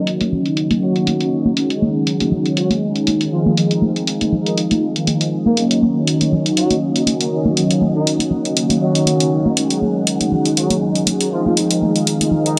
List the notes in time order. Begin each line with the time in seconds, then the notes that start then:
Already playing: D#3 F#3 A#3 C#4 D#4 F#4 D#5
0.07 closed hi-hat, tambourine
0.21 closed hi-hat, tambourine, high conga
0.32 tambourine, low conga
0.45 closed hi-hat, tambourine
0.57 closed hi-hat, tambourine
0.70 closed hi-hat, high conga
0.82 F#3 F#4
0.96 closed hi-hat
1.07 closed hi-hat, tambourine, high conga
1.21 closed hi-hat
1.31 D#3 F#3 A#3 C#4 D#4, tambourine
1.45 tambourine, high conga
1.56 D#3 F#3 G#3 C#4 D#4 G#4 F#5, closed hi-hat, tambourine
1.70 closed hi-hat
1.82 tambourine, high conga
1.95 tambourine
2.07 closed hi-hat, tambourine
2.20 closed hi-hat, tambourine, high conga
2.31 tambourine, low conga
2.46 closed hi-hat
2.57 F#3 F#4, closed hi-hat, tambourine
2.70 closed hi-hat, high conga
2.82 tambourine
2.95 closed hi-hat, tambourine
3.07 closed hi-hat, tambourine, high conga
3.21 closed hi-hat
3.31 D#3 F3 G#3 C4 D#4 F4 F5, tambourine
3.46 F3 F4, tambourine, high conga
3.56 D#3 F3 G#3 C4 D#4, closed hi-hat, tambourine
3.71 closed hi-hat
3.82 tambourine, high conga
3.96 closed hi-hat
4.07 closed hi-hat, tambourine
4.21 closed hi-hat, tambourine, high conga
4.32 tambourine, low conga
4.46 D#3 D#4, closed hi-hat, tambourine
4.57 closed hi-hat, tambourine
4.71 closed hi-hat, tambourine, high conga
4.95 D#3 F3 G#3 C4 D#4, closed hi-hat, tambourine
5.07 closed hi-hat, tambourine, high conga
5.21 closed hi-hat
5.31 tambourine
5.45 A#3, tambourine, high conga
5.57 D#3 F#3 A#3 C#4 D#4 F#4 D#5, closed hi-hat
5.71 closed hi-hat
5.82 tambourine, high conga
5.96 tambourine
6.07 closed hi-hat, tambourine
6.21 closed hi-hat, tambourine, high conga
6.32 tambourine, low conga
6.46 closed hi-hat
6.57 F#3 F#4, closed hi-hat, tambourine
6.70 closed hi-hat, high conga
6.95 closed hi-hat, tambourine
7.06 closed hi-hat, tambourine, high conga
7.21 closed hi-hat
7.32 D#3 F#3 A#3 C#4 D#4, tambourine
7.44 tambourine, high conga
7.56 D#3 F#3 A#3 C#4 D#4, closed hi-hat, tambourine
7.71 closed hi-hat
7.81 tambourine, high conga
7.95 D#3 D#4
8.05 closed hi-hat, tambourine
8.19 closed hi-hat, tambourine, high conga
8.31 tambourine, low conga
8.45 closed hi-hat, tambourine
8.56 closed hi-hat, tambourine
8.69 closed hi-hat, high conga
8.82 F#3 F#4
8.95 closed hi-hat, tambourine
9.06 closed hi-hat, tambourine, high conga
9.20 closed hi-hat
9.31 D#3 F#3 A#3 C#4 D#4
9.45 tambourine, high conga
9.56 D#3 F#3 G#3 C#4 D#4 G#4 F#5, closed hi-hat
9.70 closed hi-hat
9.82 tambourine, high conga
9.95 tambourine
10.06 closed hi-hat, tambourine
10.19 closed hi-hat, tambourine, high conga
10.32 tambourine, low conga
10.45 closed hi-hat, tambourine
10.57 F#3 F#4, closed hi-hat, tambourine
10.70 closed hi-hat, high conga
10.81 tambourine
10.95 closed hi-hat
11.06 closed hi-hat, tambourine, high conga
11.21 closed hi-hat
11.31 D#3 F3 G#3 C4 D#4 F4 F5, tambourine
11.45 F3 F4, tambourine, high conga
11.56 D#3 F3 G#3 C4 D#4, closed hi-hat, tambourine
11.71 closed hi-hat
11.81 tambourine, high conga
11.95 closed hi-hat, tambourine
12.07 closed hi-hat
12.20 closed hi-hat, tambourine, high conga
12.31 tambourine, low conga
12.45 D#3 D#4, closed hi-hat, tambourine